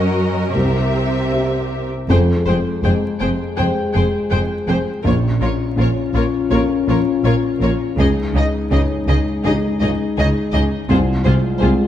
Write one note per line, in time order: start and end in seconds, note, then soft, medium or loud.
0.00 0.51 F#2 soft
0.00 0.51 F#2 medium
0.00 0.51 C#4 soft
0.00 0.50 F#4 soft
0.00 0.54 F#4 soft
0.00 1.89 A#4 soft
0.00 0.51 D#5 soft
0.52 2.06 C2 soft
0.52 1.89 C3 soft
0.52 1.88 C4 soft
0.52 1.85 G4 soft
0.52 1.89 E5 soft
1.33 2.06 G4 soft
1.33 2.06 E5 soft
2.09 2.17 F1 soft
2.09 2.17 F2 medium
2.09 5.01 F2 soft
2.09 5.01 G#3 medium
2.09 2.18 G#4 soft
2.09 5.02 G#4 medium
2.09 2.18 C5 soft
2.09 2.18 G5 soft
2.46 2.55 F1 soft
2.46 2.56 F2 soft
2.46 2.57 G#4 soft
2.46 2.54 C5 soft
2.46 2.55 G5 soft
2.83 2.92 F1 soft
2.83 2.93 F2 medium
2.83 4.02 G#3 soft
2.83 2.93 G#4 soft
2.83 2.92 C5 soft
2.83 2.92 G5 soft
3.20 3.30 F1 soft
3.20 3.29 F2 soft
3.20 3.30 G#4 soft
3.20 3.29 C5 soft
3.20 3.28 G5 soft
3.57 3.67 F1 soft
3.57 3.66 F2 medium
3.57 3.65 G#4 soft
3.57 5.01 C5 soft
3.57 3.66 C5 soft
3.57 5.01 G5 soft
3.57 3.66 G5 soft
3.94 4.04 F1 soft
3.94 4.02 F2 soft
3.94 4.03 G#4 soft
3.94 4.05 C5 soft
3.94 4.02 G5 soft
4.31 4.41 F1 soft
4.31 4.39 F2 soft
4.31 4.39 G#4 soft
4.31 4.40 C5 soft
4.31 4.39 G5 soft
4.68 4.76 F1 soft
4.68 4.76 F2 medium
4.68 4.76 G#4 soft
4.68 4.77 C5 soft
4.68 4.76 G5 soft
5.03 7.95 A#1 soft
5.03 5.13 A#1 soft
5.03 5.12 A#2 medium
5.03 7.95 C#4 medium
5.03 5.12 F4 soft
5.03 7.95 F4 medium
5.03 5.11 A#4 soft
5.03 5.15 C#5 soft
5.41 5.49 A#1 soft
5.41 5.49 A#2 soft
5.41 5.49 F4 soft
5.41 5.49 A#4 soft
5.41 5.51 C#5 soft
5.77 5.86 A#1 soft
5.77 5.85 A#2 medium
5.77 6.95 C#4 soft
5.77 5.86 F4 soft
5.77 5.87 A#4 soft
5.77 5.89 C#5 soft
6.14 6.22 A#1 soft
6.14 6.22 A#2 soft
6.14 6.22 F4 soft
6.14 6.25 A#4 soft
6.14 6.23 C#5 soft
6.50 6.58 A#1 soft
6.50 6.58 A#2 medium
6.50 6.59 F4 soft
6.50 7.95 F4 soft
6.50 7.95 A#4 soft
6.50 6.62 A#4 soft
6.50 6.60 C#5 soft
6.87 6.95 A#1 medium
6.87 6.95 A#2 soft
6.87 6.96 F4 soft
6.87 6.98 A#4 soft
6.87 6.98 C#5 soft
7.24 7.32 A#1 soft
7.24 7.33 A#2 soft
7.24 7.33 F4 medium
7.24 7.34 A#4 soft
7.24 7.34 C#5 soft
7.59 7.67 A#1 soft
7.59 7.69 A#2 soft
7.59 7.71 F4 soft
7.59 7.69 A#4 soft
7.59 7.71 C#5 soft
7.96 8.04 C#2 soft
7.96 10.86 C#2 medium
7.96 8.05 C#3 medium
7.96 10.73 G#3 medium
7.96 8.08 D#4 soft
7.96 8.07 G#4 soft
7.96 8.08 D#5 soft
8.01 10.73 D#4 medium
8.34 8.42 C#2 soft
8.34 8.42 C#3 medium
8.34 8.43 D#4 soft
8.34 8.44 G#4 soft
8.34 8.45 D#5 soft
8.71 8.79 C#2 medium
8.71 8.79 C#3 medium
8.71 9.89 C#4 soft
8.71 8.80 D#4 soft
8.71 8.79 G#4 soft
8.71 8.81 D#5 soft
9.08 9.16 C#2 medium
9.08 9.16 C#3 soft
9.08 9.16 D#4 soft
9.08 9.17 G#4 soft
9.08 9.17 D#5 soft
9.44 9.53 C#2 medium
9.44 9.53 C#3 medium
9.44 9.54 D#4 soft
9.44 10.86 D#4 soft
9.44 9.52 G#4 medium
9.44 10.87 G#4 soft
9.44 9.54 D#5 soft
9.81 9.90 C#2 medium
9.81 9.89 C#3 soft
9.81 9.90 D#4 soft
9.81 9.89 G#4 soft
9.81 9.89 D#5 soft
10.17 10.27 C#2 medium
10.17 10.26 C#3 medium
10.17 10.27 D#4 medium
10.17 10.25 G#4 soft
10.17 10.27 D#5 medium
10.53 10.62 C#2 medium
10.53 10.61 C#3 medium
10.53 10.62 D#4 soft
10.53 10.62 G#4 soft
10.53 10.62 D#5 medium
10.89 10.97 C2 medium
10.89 11.87 C2 medium
10.89 10.98 C3 medium
10.89 11.87 G#3 medium
10.89 10.98 F4 soft
10.89 11.87 F4 medium
10.89 10.98 G#4 medium
10.89 10.98 C5 medium
11.25 11.33 C2 medium
11.25 11.34 C3 medium
11.25 11.34 F4 soft
11.25 11.33 G#4 soft
11.25 11.33 C5 medium
11.60 11.68 C2 medium
11.60 11.70 C3 medium
11.60 11.87 G#3 soft
11.60 11.70 F4 medium
11.60 11.69 G#4 soft
11.60 11.68 C5 soft